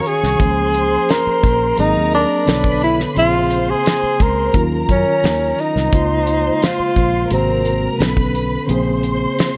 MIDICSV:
0, 0, Header, 1, 7, 480
1, 0, Start_track
1, 0, Key_signature, -5, "major"
1, 0, Tempo, 690687
1, 279, Time_signature, 4, 2, 24, 8
1, 6651, End_track
2, 0, Start_track
2, 0, Title_t, "Violin section"
2, 0, Program_c, 0, 48
2, 0, Note_on_c, 0, 73, 70
2, 0, Note_on_c, 0, 85, 76
2, 256, Note_off_c, 0, 85, 0
2, 257, Note_off_c, 0, 73, 0
2, 272, Note_on_c, 0, 72, 68
2, 274, Note_on_c, 0, 84, 76
2, 1216, Note_off_c, 0, 72, 0
2, 1217, Note_off_c, 0, 84, 0
2, 1236, Note_on_c, 0, 82, 71
2, 1237, Note_on_c, 0, 70, 62
2, 1708, Note_off_c, 0, 70, 0
2, 1708, Note_off_c, 0, 82, 0
2, 1709, Note_on_c, 0, 71, 66
2, 1709, Note_on_c, 0, 83, 76
2, 2184, Note_off_c, 0, 71, 0
2, 2184, Note_off_c, 0, 83, 0
2, 2196, Note_on_c, 0, 72, 65
2, 2196, Note_on_c, 0, 84, 75
2, 3138, Note_off_c, 0, 72, 0
2, 3138, Note_off_c, 0, 84, 0
2, 3156, Note_on_c, 0, 82, 68
2, 3158, Note_on_c, 0, 70, 63
2, 4098, Note_off_c, 0, 82, 0
2, 4099, Note_off_c, 0, 70, 0
2, 4124, Note_on_c, 0, 84, 72
2, 4126, Note_on_c, 0, 72, 70
2, 5062, Note_off_c, 0, 84, 0
2, 5063, Note_off_c, 0, 72, 0
2, 5071, Note_on_c, 0, 70, 63
2, 5072, Note_on_c, 0, 82, 68
2, 5546, Note_off_c, 0, 70, 0
2, 5546, Note_off_c, 0, 82, 0
2, 5554, Note_on_c, 0, 83, 68
2, 5556, Note_on_c, 0, 71, 65
2, 6027, Note_off_c, 0, 83, 0
2, 6028, Note_off_c, 0, 71, 0
2, 6036, Note_on_c, 0, 72, 67
2, 6037, Note_on_c, 0, 84, 74
2, 6651, Note_off_c, 0, 72, 0
2, 6651, Note_off_c, 0, 84, 0
2, 6651, End_track
3, 0, Start_track
3, 0, Title_t, "Tenor saxophone"
3, 0, Program_c, 1, 66
3, 4, Note_on_c, 1, 70, 66
3, 49, Note_on_c, 1, 68, 91
3, 59, Note_off_c, 1, 70, 0
3, 768, Note_on_c, 1, 70, 87
3, 778, Note_off_c, 1, 68, 0
3, 1243, Note_off_c, 1, 70, 0
3, 1249, Note_on_c, 1, 63, 81
3, 1467, Note_off_c, 1, 63, 0
3, 1491, Note_on_c, 1, 62, 89
3, 1937, Note_off_c, 1, 62, 0
3, 1974, Note_on_c, 1, 64, 79
3, 2078, Note_off_c, 1, 64, 0
3, 2215, Note_on_c, 1, 65, 96
3, 2575, Note_on_c, 1, 68, 93
3, 2586, Note_off_c, 1, 65, 0
3, 2936, Note_on_c, 1, 70, 90
3, 2946, Note_off_c, 1, 68, 0
3, 3219, Note_off_c, 1, 70, 0
3, 3415, Note_on_c, 1, 61, 76
3, 3894, Note_on_c, 1, 63, 82
3, 3904, Note_off_c, 1, 61, 0
3, 4616, Note_on_c, 1, 65, 77
3, 4627, Note_off_c, 1, 63, 0
3, 5088, Note_off_c, 1, 65, 0
3, 5094, Note_on_c, 1, 60, 68
3, 5539, Note_off_c, 1, 60, 0
3, 6651, End_track
4, 0, Start_track
4, 0, Title_t, "Tine electric piano"
4, 0, Program_c, 2, 4
4, 0, Control_c, 2, 64, 127
4, 0, Note_on_c, 2, 51, 75
4, 0, Note_on_c, 2, 61, 69
4, 0, Note_on_c, 2, 66, 65
4, 0, Note_on_c, 2, 77, 82
4, 200, Note_off_c, 2, 51, 0
4, 204, Note_off_c, 2, 66, 0
4, 208, Note_off_c, 2, 61, 0
4, 212, Note_off_c, 2, 77, 0
4, 265, Note_on_c, 2, 51, 54
4, 273, Note_on_c, 2, 58, 60
4, 281, Note_on_c, 2, 61, 55
4, 287, Control_c, 2, 64, 0
4, 290, Note_on_c, 2, 68, 65
4, 310, Note_on_c, 2, 53, 65
4, 317, Note_off_c, 2, 51, 0
4, 416, Control_c, 2, 64, 127
4, 1166, Note_off_c, 2, 58, 0
4, 1170, Note_off_c, 2, 61, 0
4, 1175, Note_off_c, 2, 68, 0
4, 1184, Note_off_c, 2, 53, 0
4, 1227, Note_on_c, 2, 54, 65
4, 1234, Note_on_c, 2, 58, 54
4, 1243, Note_on_c, 2, 60, 52
4, 1248, Control_c, 2, 64, 0
4, 1250, Note_on_c, 2, 68, 68
4, 1380, Control_c, 2, 64, 127
4, 1706, Note_on_c, 2, 50, 64
4, 1713, Note_off_c, 2, 54, 0
4, 1713, Note_on_c, 2, 59, 63
4, 1716, Note_off_c, 2, 58, 0
4, 1721, Note_off_c, 2, 60, 0
4, 1721, Note_on_c, 2, 73, 63
4, 1724, Note_off_c, 2, 68, 0
4, 1728, Control_c, 2, 64, 0
4, 1728, Note_on_c, 2, 69, 81
4, 1842, Control_c, 2, 64, 127
4, 2157, Note_off_c, 2, 50, 0
4, 2161, Note_off_c, 2, 59, 0
4, 2165, Note_off_c, 2, 73, 0
4, 2168, Note_off_c, 2, 69, 0
4, 2184, Note_on_c, 2, 49, 62
4, 2192, Note_on_c, 2, 58, 54
4, 2197, Note_on_c, 2, 60, 57
4, 2207, Note_on_c, 2, 68, 72
4, 2209, Control_c, 2, 64, 0
4, 2349, Control_c, 2, 64, 127
4, 3081, Note_off_c, 2, 49, 0
4, 3085, Note_off_c, 2, 58, 0
4, 3088, Note_off_c, 2, 60, 0
4, 3093, Note_off_c, 2, 68, 0
4, 3145, Note_on_c, 2, 51, 61
4, 3152, Note_on_c, 2, 54, 54
4, 3159, Note_on_c, 2, 61, 57
4, 3168, Control_c, 2, 64, 0
4, 3169, Note_on_c, 2, 65, 73
4, 3279, Control_c, 2, 64, 127
4, 4042, Note_off_c, 2, 51, 0
4, 4046, Note_off_c, 2, 54, 0
4, 4049, Note_off_c, 2, 61, 0
4, 4054, Note_off_c, 2, 65, 0
4, 4109, Note_on_c, 2, 49, 63
4, 4118, Note_on_c, 2, 56, 56
4, 4123, Note_on_c, 2, 58, 59
4, 4127, Control_c, 2, 64, 0
4, 4133, Note_on_c, 2, 65, 70
4, 4264, Control_c, 2, 64, 127
4, 5004, Note_off_c, 2, 49, 0
4, 5009, Note_off_c, 2, 56, 0
4, 5011, Note_off_c, 2, 58, 0
4, 5016, Note_off_c, 2, 65, 0
4, 5064, Note_on_c, 2, 48, 61
4, 5071, Note_on_c, 2, 56, 60
4, 5080, Note_on_c, 2, 58, 52
4, 5087, Note_on_c, 2, 66, 70
4, 5088, Control_c, 2, 64, 0
4, 5213, Control_c, 2, 64, 127
4, 5544, Note_on_c, 2, 50, 66
4, 5552, Note_off_c, 2, 48, 0
4, 5552, Note_on_c, 2, 59, 63
4, 5555, Note_off_c, 2, 56, 0
4, 5559, Note_off_c, 2, 58, 0
4, 5559, Note_on_c, 2, 61, 58
4, 5563, Note_off_c, 2, 66, 0
4, 5567, Note_on_c, 2, 69, 78
4, 5568, Control_c, 2, 64, 0
4, 5669, Control_c, 2, 64, 127
4, 5997, Note_off_c, 2, 50, 0
4, 6001, Note_off_c, 2, 59, 0
4, 6004, Note_off_c, 2, 61, 0
4, 6008, Note_off_c, 2, 69, 0
4, 6026, Note_on_c, 2, 49, 77
4, 6033, Note_on_c, 2, 58, 73
4, 6041, Note_on_c, 2, 60, 74
4, 6048, Control_c, 2, 64, 0
4, 6049, Note_on_c, 2, 68, 83
4, 6157, Control_c, 2, 64, 127
4, 6651, Note_off_c, 2, 49, 0
4, 6651, Note_off_c, 2, 58, 0
4, 6651, Note_off_c, 2, 60, 0
4, 6651, Note_off_c, 2, 68, 0
4, 6651, End_track
5, 0, Start_track
5, 0, Title_t, "Fingered electric bass"
5, 0, Program_c, 3, 33
5, 162, Note_on_c, 3, 36, 71
5, 258, Note_off_c, 3, 36, 0
5, 279, Note_on_c, 3, 37, 70
5, 667, Note_off_c, 3, 37, 0
5, 999, Note_on_c, 3, 34, 80
5, 1193, Note_off_c, 3, 34, 0
5, 1242, Note_on_c, 3, 32, 92
5, 1338, Note_off_c, 3, 32, 0
5, 1362, Note_on_c, 3, 39, 67
5, 1555, Note_off_c, 3, 39, 0
5, 1722, Note_on_c, 3, 35, 93
5, 2109, Note_off_c, 3, 35, 0
5, 2202, Note_on_c, 3, 34, 87
5, 2589, Note_off_c, 3, 34, 0
5, 2921, Note_on_c, 3, 37, 78
5, 3114, Note_off_c, 3, 37, 0
5, 3158, Note_on_c, 3, 39, 83
5, 3352, Note_off_c, 3, 39, 0
5, 3399, Note_on_c, 3, 42, 74
5, 3496, Note_off_c, 3, 42, 0
5, 3641, Note_on_c, 3, 39, 87
5, 3835, Note_off_c, 3, 39, 0
5, 4000, Note_on_c, 3, 36, 72
5, 4097, Note_off_c, 3, 36, 0
5, 4121, Note_on_c, 3, 37, 81
5, 4509, Note_off_c, 3, 37, 0
5, 4841, Note_on_c, 3, 34, 83
5, 5034, Note_off_c, 3, 34, 0
5, 5082, Note_on_c, 3, 32, 93
5, 5469, Note_off_c, 3, 32, 0
5, 5562, Note_on_c, 3, 35, 100
5, 5949, Note_off_c, 3, 35, 0
5, 6041, Note_on_c, 3, 34, 84
5, 6429, Note_off_c, 3, 34, 0
5, 6651, End_track
6, 0, Start_track
6, 0, Title_t, "Muted fingered electric bass strokes"
6, 882, Note_on_c, 9, 29, 44
6, 951, Note_off_c, 9, 29, 0
6, 2802, Note_on_c, 9, 29, 40
6, 2871, Note_off_c, 9, 29, 0
6, 4722, Note_on_c, 9, 29, 40
6, 4792, Note_off_c, 9, 29, 0
6, 6651, End_track
7, 0, Start_track
7, 0, Title_t, "Drums"
7, 39, Note_on_c, 9, 42, 57
7, 109, Note_off_c, 9, 42, 0
7, 163, Note_on_c, 9, 38, 32
7, 233, Note_off_c, 9, 38, 0
7, 276, Note_on_c, 9, 36, 95
7, 277, Note_on_c, 9, 42, 75
7, 346, Note_off_c, 9, 36, 0
7, 346, Note_off_c, 9, 42, 0
7, 515, Note_on_c, 9, 42, 68
7, 584, Note_off_c, 9, 42, 0
7, 758, Note_on_c, 9, 42, 74
7, 768, Note_on_c, 9, 38, 88
7, 828, Note_off_c, 9, 42, 0
7, 838, Note_off_c, 9, 38, 0
7, 997, Note_on_c, 9, 36, 85
7, 1000, Note_on_c, 9, 42, 63
7, 1067, Note_off_c, 9, 36, 0
7, 1069, Note_off_c, 9, 42, 0
7, 1233, Note_on_c, 9, 42, 70
7, 1302, Note_off_c, 9, 42, 0
7, 1477, Note_on_c, 9, 42, 58
7, 1546, Note_off_c, 9, 42, 0
7, 1719, Note_on_c, 9, 42, 71
7, 1729, Note_on_c, 9, 38, 100
7, 1788, Note_off_c, 9, 42, 0
7, 1798, Note_off_c, 9, 38, 0
7, 1834, Note_on_c, 9, 36, 74
7, 1904, Note_off_c, 9, 36, 0
7, 1959, Note_on_c, 9, 42, 53
7, 2029, Note_off_c, 9, 42, 0
7, 2084, Note_on_c, 9, 38, 32
7, 2154, Note_off_c, 9, 38, 0
7, 2197, Note_on_c, 9, 42, 69
7, 2267, Note_off_c, 9, 42, 0
7, 2435, Note_on_c, 9, 42, 67
7, 2504, Note_off_c, 9, 42, 0
7, 2682, Note_on_c, 9, 42, 78
7, 2692, Note_on_c, 9, 38, 93
7, 2751, Note_off_c, 9, 42, 0
7, 2761, Note_off_c, 9, 38, 0
7, 2919, Note_on_c, 9, 36, 81
7, 2924, Note_on_c, 9, 42, 62
7, 2989, Note_off_c, 9, 36, 0
7, 2993, Note_off_c, 9, 42, 0
7, 3156, Note_on_c, 9, 36, 83
7, 3156, Note_on_c, 9, 42, 72
7, 3225, Note_off_c, 9, 36, 0
7, 3225, Note_off_c, 9, 42, 0
7, 3397, Note_on_c, 9, 36, 68
7, 3399, Note_on_c, 9, 42, 58
7, 3467, Note_off_c, 9, 36, 0
7, 3469, Note_off_c, 9, 42, 0
7, 3641, Note_on_c, 9, 42, 71
7, 3651, Note_on_c, 9, 38, 100
7, 3711, Note_off_c, 9, 42, 0
7, 3721, Note_off_c, 9, 38, 0
7, 3881, Note_on_c, 9, 42, 56
7, 3951, Note_off_c, 9, 42, 0
7, 4007, Note_on_c, 9, 38, 33
7, 4076, Note_off_c, 9, 38, 0
7, 4119, Note_on_c, 9, 36, 98
7, 4120, Note_on_c, 9, 42, 76
7, 4188, Note_off_c, 9, 36, 0
7, 4190, Note_off_c, 9, 42, 0
7, 4355, Note_on_c, 9, 42, 73
7, 4425, Note_off_c, 9, 42, 0
7, 4602, Note_on_c, 9, 42, 78
7, 4612, Note_on_c, 9, 38, 96
7, 4672, Note_off_c, 9, 42, 0
7, 4682, Note_off_c, 9, 38, 0
7, 4839, Note_on_c, 9, 36, 76
7, 4841, Note_on_c, 9, 42, 61
7, 4908, Note_off_c, 9, 36, 0
7, 4911, Note_off_c, 9, 42, 0
7, 5076, Note_on_c, 9, 42, 73
7, 5145, Note_off_c, 9, 42, 0
7, 5317, Note_on_c, 9, 42, 57
7, 5387, Note_off_c, 9, 42, 0
7, 5562, Note_on_c, 9, 42, 68
7, 5572, Note_on_c, 9, 38, 101
7, 5632, Note_off_c, 9, 42, 0
7, 5642, Note_off_c, 9, 38, 0
7, 5677, Note_on_c, 9, 36, 83
7, 5746, Note_off_c, 9, 36, 0
7, 5801, Note_on_c, 9, 42, 60
7, 5871, Note_off_c, 9, 42, 0
7, 6039, Note_on_c, 9, 42, 77
7, 6108, Note_off_c, 9, 42, 0
7, 6276, Note_on_c, 9, 42, 65
7, 6346, Note_off_c, 9, 42, 0
7, 6524, Note_on_c, 9, 42, 76
7, 6533, Note_on_c, 9, 38, 98
7, 6593, Note_off_c, 9, 42, 0
7, 6603, Note_off_c, 9, 38, 0
7, 6651, End_track
0, 0, End_of_file